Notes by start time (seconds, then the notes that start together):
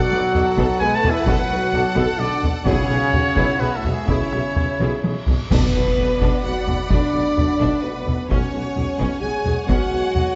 Already playing: B2 F#3 F#4 A4 D5 F#5
0.11 B1 B2 A4 B4
0.34 B1 B2 A4 D5, taiko low-mid
0.57 B1 B2 A4, taiko
0.79 B1 B2 G#3 G#4 A4 B4 G#5
0.95 A3 A4 A5
1.03 B1 B2 A4 D5, taiko low-mid
1.10 E3 E4 E5
1.26 B1 B2 F#3 F#4 A4 F#5, taiko
1.49 B1 B2 A4 B4
1.72 B1 B2 A4 D5, taiko low-mid
1.95 B1 B2 A4, taiko
2.18 B1 B2 D3 D4 A4 B4 D5
2.42 B1 B2 A4 D5, taiko low-mid
2.66 B1 B2 C#3 C#4 E4 G#4 C#5, taiko
2.89 B1 B2 G#4
3.11 B1 B2 F#4 G#4 C#5, taiko low-mid
3.35 B1 B2 E4 G#4, taiko
3.58 B1 B2 B3 G#4 B4 E5
3.75 A2 A3 A4
3.83 B1 B2 G#4 C#5, taiko low-mid
3.90 G#2 G#3 G#4
4.07 B1 B2 C#3 C#4 E4 G#4 C#5, taiko
4.32 B1 B2 G#4, taiko rim
4.56 B1 B2 G#4 C#5, taiko low-mid
4.80 B1 B2 E4 G#4, taiko high
5.04 B1 B2 G#4, taiko high
5.28 B1 B2 G#4 C#5, taiko low
5.50 B1 B2 F#3 A3 B3 D4 B4 D5 F#5 B5, concert bass drum, taiko, crash, impact
5.75 B1 B2 F#4
5.98 B1 B2 A4, taiko low-mid
6.21 B1 B2 D4, taiko
6.43 B1 B2 F#4 F#5
6.67 B1 B2 A4, taiko low-mid
6.90 B1 B2 D4 D5, taiko
7.13 B1 B2 F#4
7.37 B1 B2 A4, taiko low-mid
7.60 B1 B2 D4, taiko
7.82 B1 B2 B3 F#4 B4
8.06 B1 B2 A4, taiko low-mid
8.29 B1 B2 F#3 G#3 C#4 C#5 F#5 G#5, taiko
8.53 B1 B2 F#4
8.76 B1 B2 G#4, taiko low-mid
8.99 B1 B2 C#4, taiko
9.21 B1 B2 F#4 G#4 G#5
9.45 B1 B2 G#4, taiko low-mid
9.67 B1 B2 C#4 F#4 F#5, taiko
9.92 B1 B2 F#4
10.14 B1 B2 G#4, taiko low-mid